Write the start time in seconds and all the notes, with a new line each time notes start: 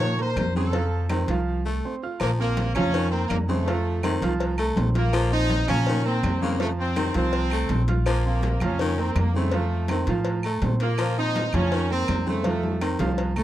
Already playing: A#2 F3 F4 C#5 F5
0.00 D#3, cowbell, high conga, low conga
0.18 A#3 A#4 C5 A#5, high conga, low agogo
0.36 F2, cowbell, high conga, low timbale, low agogo, claves
0.55 C#3 C4 A4 C5 C6, high conga
0.73 F3 F4 F5, cowbell, high conga, low agogo
0.92 high conga
1.09 D#3 C4 C5 C6, cowbell, high conga, low timbale, low agogo, claves
1.28 C2 F3 F4 F5, cowbell, high conga
1.65 A3 A4 A5
1.85 C4 C5 C6
2.03 F4 F5 F6
2.20 A#1 F3 A#3, cowbell, low agogo, claves
2.39 A#3 C4 C5 C6, high conga
2.57 cowbell, high conga, low timbale, low agogo
2.74 F2 F3 C#4 F4 F5, cowbell, high conga, low conga, low agogo, claves
2.94 D#3, cowbell, high conga
3.11 A#3 C4 A#4 A#5, high conga, low agogo
3.28 F2 A#3, cowbell, high conga, low timbale, low agogo, claves
3.48 C#3 A3 C4 C5 C6, high conga
3.67 F3 F4 F5, cowbell, high conga, low agogo
3.85 high conga
4.03 D#3 C4 C5 C6, cowbell, high conga, low timbale, low agogo, claves
4.21 C2 F3 F4 F5, cowbell, high conga
4.40 cowbell, low agogo
4.58 A3 A4 A5, high conga, low agogo, claves
4.76 A#1 C4 C5 C6, cowbell, high conga, low timbale
4.94 A#3 F4 F5 F6, cowbell, high conga
5.13 F3, cowbell, high conga, low agogo, claves
5.31 C4 D#4 C5 C6, high conga
5.49 cowbell, high conga, low timbale, low agogo
5.68 A#2 F3 C#4 F4 F5, cowbell, high conga, low conga, low agogo, claves
5.86 D#3, cowbell, high conga, low conga
6.05 A#3 C4 A#4 A#5, high conga, low agogo
6.23 F2, cowbell, high conga, low timbale, low agogo, claves
6.41 C#3 A#3 C4 C5 C6, high conga
6.60 F3 A3 F4 F5, cowbell, high conga, low agogo
6.79 C4, high conga
6.96 D#3 C4 C5 C6, cowbell, high conga, low timbale, low agogo, claves
7.14 C2 F3 C4 F4 F5, cowbell, high conga
7.33 cowbell, high conga, low agogo
7.50 A3 A4 A5, high conga, low agogo, claves
7.69 A#1 C4 C5 C6, cowbell, high conga, low timbale
7.87 F4 F5 F6, cowbell, high conga
8.06 F3 A#3, cowbell, high conga, low agogo, claves
8.26 A#3 C4 C5 C6
8.42 cowbell, high conga, low timbale, low agogo
8.60 F2 F3 C#4 F4 F5, cowbell, high conga, low conga, low agogo, claves
8.79 D#3, cowbell, high conga, low conga
8.97 A#3 C4 A#4 A#5, high conga, low agogo
9.15 F2 A#3, cowbell, high conga, low timbale, low agogo, claves
9.34 C#3 A3 C4 C5 C6, high conga
9.52 F3 F4 F5, cowbell, high conga, low agogo
9.71 high conga
9.88 D#3 C4 C5 C6, cowbell, high conga, low timbale, low agogo, claves
10.07 A2 F3 F4 F5, cowbell, high conga
10.25 cowbell, high conga, low agogo
10.43 A3 A4 A5, high conga, low agogo, claves
10.62 A#2 C4 C5 C6, cowbell, high conga, low timbale
10.80 A#3 F4 F5 F6, cowbell
10.98 F3, cowbell, high conga, low agogo, claves
11.17 C4 D#4 C5 C6, high conga
11.36 cowbell, high conga, low timbale, low agogo
11.53 F2 F3 C#4 F4 F5, cowbell, high conga, low conga, low agogo, claves
11.72 D#3, cowbell, high conga
11.90 A#3 C4 A#4 A#5, high conga, low agogo
12.08 F2, cowbell, high conga, low timbale, low agogo, claves
12.27 C#3 A3 C4 C5 C6, high conga
12.44 F3 F4 F5, cowbell, high conga, low agogo
12.63 high conga
12.81 D#3 C4 C5 C6, cowbell, low timbale, low agogo, claves
12.99 C2 F3 F4 F5, cowbell, low conga
13.18 cowbell, low agogo
13.36 A3 A4 A5, low conga, low agogo, claves